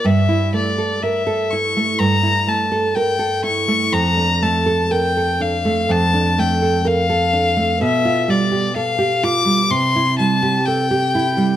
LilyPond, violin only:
\new Staff \with { instrumentName = "Violin" } { \time 4/4 \key d \minor \tempo 4 = 62 e''8 d''8 e''8 cis'''8 bes''8 a''8 g''8 cis'''8 | bes''8 a''8 g''8 f''8 a''8 g''8 f''4 | e''8 d''8 f''8 d'''8 c'''8 a''8 g''4 | }